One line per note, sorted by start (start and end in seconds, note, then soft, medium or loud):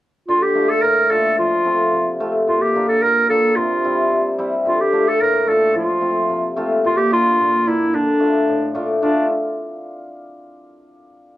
0.28 0.88 D3 medium
0.28 0.44 F4 medium
0.42 0.71 G4 medium
0.55 0.69 A3 soft
0.55 0.69 D4 soft
0.55 0.69 F4 medium
0.70 0.84 A4 medium
0.82 1.43 A2 soft
0.82 1.12 A#4 medium
1.10 1.24 A3 medium
1.10 1.24 D4 medium
1.10 1.24 F4 medium
1.10 1.38 A4 medium
1.38 1.97 F3 medium
1.38 2.16 F4 medium
1.65 1.79 A3 medium
1.65 1.79 C4 medium
1.65 1.79 F4 medium
1.92 2.52 C3 soft
2.20 2.34 A3 medium
2.20 2.34 C4 medium
2.20 2.34 F4 medium
2.47 3.01 A#2 medium
2.47 2.63 F4 medium
2.61 2.87 G4 medium
2.75 2.89 A#3 soft
2.75 2.89 D4 soft
2.75 2.89 F4 medium
2.88 3.04 A4 medium
3.02 3.62 A#2 soft
3.02 3.29 A#4 medium
3.29 3.43 A#3 medium
3.29 3.43 D4 soft
3.29 3.43 F4 medium
3.29 3.57 A4 medium
3.56 4.10 C3 medium
3.56 4.38 F4 medium
3.84 4.37 G3 medium
3.84 3.98 C4 soft
3.84 3.98 E4 medium
4.12 4.71 C3 soft
4.38 4.71 G3 medium
4.38 4.52 C4 medium
4.38 4.52 E4 medium
4.66 5.26 D3 medium
4.66 4.82 F4 medium
4.81 5.10 G4 medium
4.92 5.07 A3 medium
4.92 5.07 D4 soft
4.92 5.07 F4 medium
5.08 5.23 A4 medium
5.20 5.81 A2 medium
5.20 5.50 A#4 medium
5.47 5.61 A3 medium
5.47 5.62 D4 soft
5.47 5.61 F4 medium
5.47 5.76 A4 medium
5.74 6.35 F3 medium
5.74 6.54 F4 medium
6.01 6.16 A3 soft
6.01 6.16 C4 soft
6.01 6.16 F4 medium
6.29 6.90 C3 soft
6.57 6.71 A3 medium
6.57 6.71 C4 medium
6.57 6.71 F4 medium
6.85 7.38 A#2 medium
6.85 6.99 F4 medium
6.97 7.12 G4 medium
7.11 7.26 A#3 soft
7.11 7.26 D4 medium
7.11 7.26 F4 medium
7.11 7.69 F4 medium
7.39 7.99 A#2 medium
7.67 7.81 A#3 medium
7.67 7.81 D4 medium
7.67 7.96 E4 medium
7.67 7.81 F4 medium
7.93 8.53 D3 medium
7.93 8.76 D4 medium
8.20 8.34 A3 soft
8.20 8.34 D4 soft
8.20 8.34 F4 medium
8.48 9.07 A2 soft
8.75 8.89 A3 medium
8.75 8.89 D4 medium
8.75 8.89 F4 medium
9.01 9.28 A3 medium
9.01 9.27 D4 medium
9.01 9.28 D4 medium
9.01 9.28 F4 medium